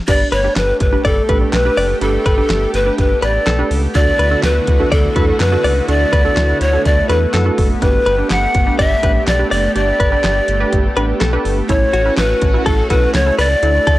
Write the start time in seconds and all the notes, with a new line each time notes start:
0.08 G1 A3 B3 D4 G4 B4 D5, kick, closed hi-hat, crash
0.32 G1 B4 C#5, closed hi-hat
0.44 D4 G4 B4
0.56 G1 B4, snare, clap, closed hi-hat
0.80 G1 B4, kick, closed hi-hat
0.93 D4 G4 B4
1.05 G1 A4 D5, kick, closed hi-hat
1.29 A1 D4 G4 B4, kick, closed hi-hat
1.53 B1 B4, snare, clap, closed hi-hat
1.65 D4 G4 B4
1.77 F#1 D5, open hi-hat
2.01 G1 D4 G4 A4 B4, closed hi-hat
2.26 G1 B4, kick, closed hi-hat
2.38 D4 G4 B4
2.50 G1, snare, clap, closed hi-hat
2.74 G1 B4, closed hi-hat
2.86 D4 G4 B4
2.98 G1 B4, kick, closed hi-hat
3.22 A1 D4 G4 B4 D5, closed hi-hat
3.47 B1 A4, snare, clap, closed hi-hat
3.59 D4 G4 B4
3.71 C#2, open hi-hat
3.95 D2 D3 A3 D4 E4 F#4 A4 D5, kick, closed hi-hat
4.19 D2 B4, closed hi-hat
4.31 D4 F#4 A4
4.43 D2 B4, snare, clap, closed hi-hat
4.67 D2, kick, closed hi-hat
4.80 D4 F#4 A4
4.92 D2 A4 D5, kick, closed hi-hat
5.16 E2 D4 F#4 A4 B4, kick, closed hi-hat
5.40 F#2 B4, snare, clap, closed hi-hat
5.52 D4 F#4 A4
5.64 C#2 D5, open hi-hat
5.88 D2 D4 F#4 A4 D5, closed hi-hat
6.13 D2 B4, kick, closed hi-hat
6.25 D4 F#4 A4
6.37 D2, snare, clap, closed hi-hat
6.61 D2 C#5, closed hi-hat
6.73 D4 F#4 A4
6.85 D2 D5, kick, closed hi-hat
7.09 E2 D4 F#4 A4 B4, closed hi-hat
7.34 F#2 A4, snare, clap, closed hi-hat
7.46 D4 F#4 A4
7.58 F#1, kick, open hi-hat
7.82 G1 D4 G4 B4, kick, closed hi-hat
8.06 G1 B4, closed hi-hat
8.18 D4 G4 B4
8.30 G1 F#5, snare, clap, closed hi-hat
8.54 G1, kick, closed hi-hat
8.67 D4 G4 B4
8.79 G1 D5 E5, kick, closed hi-hat
9.03 A1 D4 G4 B4, kick, closed hi-hat
9.27 B1 D5, snare, clap, closed hi-hat
9.39 D4 G4 B4
9.51 F#1 D5, open hi-hat
9.76 G1 D4 G4 D5, closed hi-hat
10.00 G1 B4, kick, closed hi-hat
10.12 D4 G4 B4
10.24 G1, snare, clap, closed hi-hat
10.48 G1, closed hi-hat
10.60 D4 G4 B4
10.73 G1, kick, closed hi-hat
10.97 A1 D4 G4 B4, closed hi-hat
11.21 B1 A4, snare, clap, closed hi-hat
11.33 D4 G4 B4
11.45 G1, open hi-hat
11.69 A1 C#4 E4 F#4 A4 C#5, kick, closed hi-hat
11.93 A1 F#4, closed hi-hat
12.05 C#4 E4 B4
12.17 A1 B4, snare, clap, closed hi-hat
12.42 A1, kick, closed hi-hat
12.54 C#4 E4 F#4
12.66 A1 A4, kick, closed hi-hat
12.90 B1 C#4 E4 F#4 A4 B4, kick, closed hi-hat
13.14 C#2 C#5, snare, clap, closed hi-hat
13.26 C#4 E4 A4
13.38 C#2 B4 D5, open hi-hat
13.63 D2 D4 E4 A4, closed hi-hat
13.87 D2 A4, kick, closed hi-hat